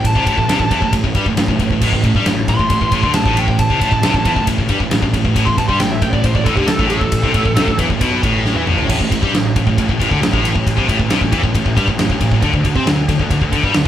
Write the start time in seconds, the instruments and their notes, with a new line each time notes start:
Already playing: picked electric bass A1, distorted electric guitar A2
0.05 lead electric guitar A5, kick, ride
0.16 picked electric bass C2, distorted electric guitar C3, kick
0.27 picked electric bass A1, distorted electric guitar A2, kick, ride
0.38 picked electric bass A1, distorted electric guitar A2, kick
0.48 picked electric bass C2, distorted electric guitar C3, snare, ride
0.60 picked electric bass A1, distorted electric guitar A2, kick
0.71 picked electric bass E2, distorted electric guitar E3, kick, ride
0.82 picked electric bass A1, distorted electric guitar A2, kick
0.93 picked electric bass A1, distorted electric guitar A2, kick, ride
1.04 picked electric bass A1, distorted electric guitar A2, kick
1.15 picked electric bass G2, distorted electric guitar G3, kick, ride
1.26 picked electric bass A1, distorted electric guitar A2, kick
1.37 picked electric bass A1, distorted electric guitar A2, snare, ride
1.48 picked electric bass A1, distorted electric guitar A2, kick
1.59 picked electric bass A1, distorted electric guitar A2, kick, ride
1.71 picked electric bass A1, distorted electric guitar A2, kick
1.81 picked electric bass A1, distorted electric guitar A2, kick, crash
1.93 picked electric bass A1, distorted electric guitar A2, kick
2.04 picked electric bass A1, distorted electric guitar A2, kick, ride
2.15 picked electric bass G2, distorted electric guitar G3, kick
2.25 picked electric bass A1, distorted electric guitar A2, snare, ride
2.48 picked electric bass A1, distorted electric guitar A2, lead electric guitar C6, kick, ride
2.59 picked electric bass A1, distorted electric guitar A2, kick
2.70 picked electric bass A1, distorted electric guitar A2, kick, ride
2.81 picked electric bass A1, distorted electric guitar A2, kick
2.92 picked electric bass A1, distorted electric guitar A2, kick, ride
3.03 picked electric bass D2, distorted electric guitar D3, kick
3.13 picked electric bass A1, distorted electric guitar A2, lead electric guitar A5, snare, ride
3.26 picked electric bass A1, distorted electric guitar A2, kick
3.37 lead electric guitar G5, ride
3.48 picked electric bass A1, distorted electric guitar A2, kick
3.59 lead electric guitar A5, kick, ride
3.70 picked electric bass C2, distorted electric guitar C3, kick
3.81 picked electric bass A1, distorted electric guitar A2, kick, ride
3.92 picked electric bass A1, distorted electric guitar A2, kick
4.02 picked electric bass C2, distorted electric guitar C3, snare, ride
4.14 picked electric bass A1, distorted electric guitar A2, kick
4.25 picked electric bass E2, distorted electric guitar E3, kick, ride
4.36 picked electric bass A1, distorted electric guitar A2, kick
4.47 picked electric bass A1, distorted electric guitar A2, kick, ride
4.58 picked electric bass A1, distorted electric guitar A2, kick
4.69 picked electric bass G2, distorted electric guitar G3, kick, ride
4.80 picked electric bass A1, distorted electric guitar A2, kick
4.91 picked electric bass A1, distorted electric guitar A2, snare, ride
5.02 picked electric bass A1, distorted electric guitar A2, kick
5.14 picked electric bass A1, distorted electric guitar A2, kick, ride
5.25 picked electric bass A1, distorted electric guitar A2, kick
5.36 picked electric bass A1, distorted electric guitar A2, kick, ride
5.46 picked electric bass A1, distorted electric guitar A2, lead electric guitar C6, kick
5.58 picked electric bass A1, distorted electric guitar A2, lead electric guitar A5, kick, ride
5.68 picked electric bass G2, distorted electric guitar G3, lead electric guitar C6, kick
5.80 picked electric bass A1, distorted electric guitar A2, lead electric guitar G5, snare, ride
5.92 lead electric guitar E5
6.02 picked electric bass A1, distorted electric guitar A2, lead electric guitar G5, kick, ride
6.13 picked electric bass A1, distorted electric guitar A2, lead electric guitar D5, kick
6.24 picked electric bass A1, distorted electric guitar A2, lead electric guitar C5, kick, ride
6.35 picked electric bass A1, distorted electric guitar A2, lead electric guitar D5, kick
6.44 picked electric bass A1, distorted electric guitar A2, lead electric guitar A4, kick, ride
6.56 picked electric bass D2, distorted electric guitar D3, lead electric guitar G4, kick
6.67 picked electric bass A1, distorted electric guitar A2, lead electric guitar A4, snare, ride
6.79 picked electric bass A1, distorted electric guitar A2, kick
6.88 lead electric guitar A4, ride
7.01 picked electric bass A1, distorted electric guitar A2, kick
7.12 kick, ride
7.22 picked electric bass C2, distorted electric guitar C3, kick
7.34 picked electric bass A1, distorted electric guitar A2, kick, ride
7.45 picked electric bass A1, distorted electric guitar A2, kick
7.55 picked electric bass C2, distorted electric guitar C3, snare, ride
7.66 picked electric bass A1, distorted electric guitar A2, kick
7.78 picked electric bass E2, distorted electric guitar E3, kick, ride
7.89 picked electric bass A1, distorted electric guitar A2, kick
8.00 picked electric bass B1, distorted electric guitar B2, kick, ride
8.23 picked electric bass A1, distorted electric guitar A2, kick, ride
8.46 snare
8.55 picked electric bass E2, distorted electric guitar E3
8.67 picked electric bass A1, distorted electric guitar A2, mid tom
8.78 floor tom
8.89 picked electric bass A1, distorted electric guitar A2, kick, crash
9.00 picked electric bass A1, distorted electric guitar A2, kick
9.11 picked electric bass A1, distorted electric guitar A2, kick, ride
9.22 picked electric bass G2, distorted electric guitar G3, kick
9.33 picked electric bass A1, distorted electric guitar A2, snare, ride
9.56 picked electric bass A1, distorted electric guitar A2, kick, ride
9.67 picked electric bass A1, distorted electric guitar A2, kick
9.78 picked electric bass A1, distorted electric guitar A2, kick, ride
9.88 picked electric bass A1, distorted electric guitar A2, kick
10.00 picked electric bass A1, distorted electric guitar A2, kick, ride
10.10 picked electric bass D2, distorted electric guitar D3, kick
10.22 picked electric bass A1, distorted electric guitar A2, snare, ride
10.32 picked electric bass A1, distorted electric guitar A2, kick
10.45 ride
10.54 picked electric bass A1, distorted electric guitar A2, kick
10.67 kick, ride
10.78 picked electric bass C2, distorted electric guitar C3, kick
10.89 picked electric bass A1, distorted electric guitar A2, kick, ride
10.99 picked electric bass A1, distorted electric guitar A2, kick
11.09 picked electric bass C2, distorted electric guitar C3, snare, ride
11.21 picked electric bass A1, distorted electric guitar A2, kick
11.32 picked electric bass E2, distorted electric guitar E3, kick, ride
11.44 picked electric bass A1, distorted electric guitar A2, kick
11.54 picked electric bass A1, distorted electric guitar A2, kick, ride
11.65 picked electric bass A1, distorted electric guitar A2, kick
11.76 picked electric bass G2, distorted electric guitar G3, kick, ride
11.88 picked electric bass A1, distorted electric guitar A2, kick
11.97 picked electric bass A1, distorted electric guitar A2, snare, ride
12.10 picked electric bass A1, distorted electric guitar A2, kick
12.20 picked electric bass A1, distorted electric guitar A2, kick, ride
12.31 picked electric bass A1, distorted electric guitar A2, kick
12.42 picked electric bass D2, distorted electric guitar D3, kick, ride
12.53 picked electric bass D2, distorted electric guitar D3, kick
12.64 picked electric bass D2, distorted electric guitar D3, kick, ride
12.76 picked electric bass C3, distorted electric guitar C4, kick
12.86 picked electric bass D2, distorted electric guitar D3, snare, ride
13.08 picked electric bass D2, distorted electric guitar D3, kick, ride
13.19 picked electric bass D2, distorted electric guitar D3, kick
13.30 picked electric bass D2, distorted electric guitar D3, kick, ride
13.41 picked electric bass D2, distorted electric guitar D3, kick
13.52 picked electric bass D2, distorted electric guitar D3, kick, ride
13.62 picked electric bass G2, distorted electric guitar G3, kick
13.73 picked electric bass D2, distorted electric guitar D3, snare, ride
13.84 distorted electric guitar D3